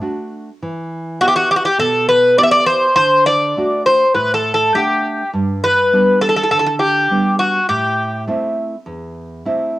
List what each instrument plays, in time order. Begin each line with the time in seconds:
0.01 nylon-string guitar A3 D4 F#4
0.62 nylon-string guitar E3
1.21 nylon-string guitar B3 E4 G4, bouzouki F#4
1.28 bouzouki G4
1.36 bouzouki F#4
1.51 bouzouki G4
1.56 bouzouki F#4
1.65 bouzouki G4
1.78 nylon-string guitar B2, bouzouki A4
2.09 bouzouki B4
2.38 nylon-string guitar B3 E4 G4, bouzouki D5
2.43 bouzouki E5
2.51 bouzouki D5
2.66 bouzouki C5
2.96 nylon-string guitar D3, bouzouki C5
3.26 bouzouki D5
3.57 nylon-string guitar A3 D4 F#4
3.86 bouzouki C5
4.14 nylon-string guitar A2, bouzouki B4
4.34 bouzouki A4
4.54 bouzouki A4
4.74 nylon-string guitar A3 D4 F#5, bouzouki G4
5.34 nylon-string guitar G2
5.64 bouzouki B4
5.93 nylon-string guitar G3 B3 D4
6.21 bouzouki A4
6.29 bouzouki A4
6.36 bouzouki A4
6.43 bouzouki A4
6.51 nylon-string guitar D3, bouzouki A4
6.59 bouzouki A4
6.66 bouzouki A4
6.79 bouzouki G4
7.11 nylon-string guitar G3 B3 D4
7.39 bouzouki F#4
7.69 nylon-string guitar A2, bouzouki G4
8.27 nylon-string guitar A3 C4 E4
8.86 nylon-string guitar E2
9.46 nylon-string guitar A3 C4 E4